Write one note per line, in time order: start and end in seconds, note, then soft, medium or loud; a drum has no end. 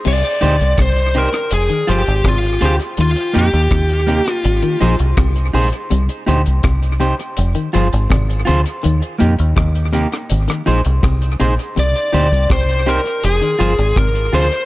0.05 0.22 C2 medium
0.05 0.18 C3 medium
0.05 0.81 D5 loud
0.05 crash medium
0.23 closed hi-hat medium
0.41 0.58 D2 medium
0.41 0.55 A#2 medium
0.41 0.55 D#4 medium
0.41 0.55 G4 medium
0.41 0.55 C5 medium
0.41 closed hi-hat medium
0.60 0.77 C2 medium
0.60 closed hi-hat medium
0.78 1.27 C2 medium
0.78 0.91 C3 medium
0.78 kick loud
0.78 cross-stick loud
0.78 closed hi-hat medium
0.82 1.18 C5 medium
0.96 closed hi-hat soft
1.14 1.28 C3 medium
1.14 1.28 D#4 medium
1.14 1.29 G4 medium
1.14 1.53 A#4 medium
1.14 1.29 C5 medium
1.14 closed hi-hat medium
1.33 muted clean electric guitar stroke soft
1.33 cross-stick medium
1.33 closed hi-hat soft
1.51 1.68 F1 medium
1.51 1.90 G#4 loud
1.51 closed hi-hat loud
1.69 1.82 D#3 medium
1.69 closed hi-hat medium
1.87 2.05 G1 medium
1.87 2.01 F3 medium
1.87 2.01 F4 medium
1.87 2.27 G4 medium
1.87 2.02 G#4 medium
1.87 2.02 C5 loud
1.87 closed hi-hat medium
2.06 2.23 G#1 medium
2.06 closed hi-hat medium
2.24 2.57 G#1 medium
2.24 2.38 C3 medium
2.24 2.64 F4 medium
2.24 kick loud
2.24 cross-stick loud
2.24 closed hi-hat medium
2.43 closed hi-hat soft
2.61 2.78 D2 medium
2.61 2.74 C3 medium
2.61 2.74 F4 medium
2.61 2.74 G4 medium
2.61 2.75 G#4 medium
2.61 2.75 C5 medium
2.61 closed hi-hat medium
2.79 muted clean electric guitar stroke soft
2.79 closed hi-hat medium
2.97 3.15 D#2 loud
2.97 3.11 D#3 medium
2.97 3.37 F4 medium
2.97 closed hi-hat medium
3.16 closed hi-hat medium
3.33 3.52 F2 medium
3.33 3.48 A#2 medium
3.33 3.47 A#3 medium
3.33 3.48 D#4 medium
3.33 3.48 G4 medium
3.33 closed hi-hat medium
3.38 4.32 G4 medium
3.53 3.69 D#2 medium
3.53 closed hi-hat soft
3.71 4.20 D#2 loud
3.71 3.84 C3 medium
3.71 kick loud
3.71 cross-stick loud
3.71 closed hi-hat medium
3.89 closed hi-hat soft
4.07 4.21 C3 medium
4.07 4.21 A#3 medium
4.07 4.21 D#4 medium
4.07 4.21 G4 medium
4.07 closed hi-hat medium
4.26 muted clean electric guitar stroke medium
4.26 cross-stick medium
4.26 closed hi-hat soft
4.32 4.79 F4 medium
4.45 4.61 G#1 loud
4.45 closed hi-hat loud
4.62 4.75 D#3 medium
4.62 closed hi-hat medium
4.80 4.98 A#1 medium
4.80 4.94 F3 medium
4.80 4.94 D#4 medium
4.80 4.95 G#4 medium
4.80 4.95 C5 medium
4.80 closed hi-hat medium
4.99 5.16 C2 medium
4.99 closed hi-hat medium
5.17 5.50 C2 medium
5.17 5.31 C3 medium
5.17 kick loud
5.17 cross-stick loud
5.17 closed hi-hat medium
5.36 closed hi-hat medium
5.53 5.71 A#1 medium
5.53 5.67 C3 medium
5.53 5.67 D#4 medium
5.53 5.68 G#4 medium
5.53 5.68 C5 loud
5.53 open hi-hat medium
5.73 closed hi-hat medium
5.90 6.07 C2 loud
5.90 6.03 C3 medium
5.90 closed hi-hat medium
6.09 closed hi-hat medium
6.26 6.44 D2 medium
6.26 6.40 A#2 medium
6.26 6.40 D#4 medium
6.26 6.41 G4 medium
6.26 6.41 C5 medium
6.26 closed hi-hat medium
6.46 6.63 C2 medium
6.46 closed hi-hat soft
6.63 7.12 C2 medium
6.63 6.77 C3 medium
6.63 kick loud
6.63 cross-stick loud
6.63 closed hi-hat medium
6.83 closed hi-hat soft
7.00 7.13 C3 medium
7.00 7.14 D#4 medium
7.00 7.14 G4 medium
7.00 7.14 C5 medium
7.00 closed hi-hat medium
7.19 muted clean electric guitar stroke soft
7.19 closed hi-hat soft
7.37 7.54 F1 loud
7.37 closed hi-hat loud
7.55 7.68 D#3 medium
7.55 closed hi-hat medium
7.73 7.91 G1 medium
7.73 7.87 F3 medium
7.73 7.87 F4 medium
7.73 7.87 G#4 medium
7.73 7.88 C5 medium
7.73 closed hi-hat medium
7.93 8.09 G#1 medium
7.93 closed hi-hat medium
8.10 8.43 G#1 medium
8.10 8.23 C3 medium
8.10 kick loud
8.10 cross-stick loud
8.10 closed hi-hat medium
8.30 closed hi-hat soft
8.45 8.64 D2 medium
8.45 8.60 C3 medium
8.45 8.60 F4 medium
8.45 8.60 G#4 medium
8.45 8.61 C5 loud
8.45 closed hi-hat medium
8.64 muted clean electric guitar stroke soft
8.64 closed hi-hat medium
8.83 9.01 D#2 loud
8.83 8.96 D#3 medium
8.83 closed hi-hat medium
9.02 closed hi-hat medium
9.19 9.37 F2 medium
9.19 9.33 A#2 medium
9.19 9.33 A#3 medium
9.19 9.33 D#4 medium
9.19 9.34 G4 medium
9.19 closed hi-hat medium
9.39 9.55 D#2 medium
9.39 closed hi-hat medium
9.56 10.05 D#2 medium
9.56 9.69 C3 medium
9.56 kick loud
9.56 cross-stick loud
9.56 closed hi-hat medium
9.75 closed hi-hat soft
9.93 10.06 C3 medium
9.93 10.06 A#3 medium
9.93 10.07 D#4 medium
9.93 10.07 G4 medium
9.93 closed hi-hat medium
10.12 muted clean electric guitar stroke soft
10.12 cross-stick medium
10.12 closed hi-hat soft
10.30 10.47 G#1 medium
10.30 closed hi-hat loud
10.48 10.61 D#3 medium
10.48 cross-stick medium
10.48 closed hi-hat medium
10.66 10.83 A#1 medium
10.66 10.79 F3 medium
10.66 10.80 D#4 medium
10.66 10.80 G#4 medium
10.66 10.80 C5 medium
10.66 closed hi-hat medium
10.85 11.02 C2 medium
10.85 closed hi-hat medium
11.03 11.36 C2 medium
11.03 11.16 C3 medium
11.03 kick loud
11.03 cross-stick loud
11.03 closed hi-hat medium
11.22 closed hi-hat soft
11.40 11.57 A#1 medium
11.40 11.53 C3 medium
11.40 11.53 D#4 medium
11.40 11.53 G#4 medium
11.40 11.54 C5 medium
11.40 closed hi-hat medium
11.59 closed hi-hat medium
11.76 11.93 C2 medium
11.76 11.89 C3 medium
11.76 12.47 D5 medium
11.76 closed hi-hat medium
11.96 closed hi-hat medium
12.13 12.30 D2 medium
12.13 12.26 A#2 medium
12.13 12.26 D#4 medium
12.13 12.27 G4 medium
12.13 12.27 C5 medium
12.13 closed hi-hat medium
12.32 12.48 C2 medium
12.32 closed hi-hat medium
12.50 12.98 C2 medium
12.50 12.62 C3 medium
12.50 12.89 C5 medium
12.50 kick loud
12.50 cross-stick loud
12.50 closed hi-hat medium
12.69 closed hi-hat soft
12.86 12.99 C3 medium
12.86 13.00 D#4 medium
12.86 13.00 G4 medium
12.86 13.22 A#4 medium
12.86 13.00 C5 medium
12.86 closed hi-hat medium
13.04 muted clean electric guitar stroke soft
13.04 closed hi-hat soft
13.24 13.40 F1 medium
13.24 13.97 G#4 medium
13.24 closed hi-hat medium
13.42 13.54 D#3 medium
13.42 closed hi-hat medium
13.59 13.76 G1 medium
13.59 13.72 F3 medium
13.59 13.72 F4 medium
13.59 13.73 G#4 medium
13.59 13.73 C5 medium
13.59 closed hi-hat medium
13.78 13.94 G#1 medium
13.78 closed hi-hat medium
13.96 14.29 G#1 medium
13.96 14.09 C3 medium
13.96 14.35 A#4 medium
13.96 kick loud
13.96 cross-stick loud
13.96 closed hi-hat medium
14.15 closed hi-hat medium
14.32 14.49 D2 medium
14.32 14.45 C3 medium
14.32 14.46 F4 medium
14.32 14.46 G#4 medium
14.32 14.47 C5 loud
14.32 14.65 C5 loud
14.32 open hi-hat medium
14.51 muted clean electric guitar stroke soft
14.51 closed hi-hat medium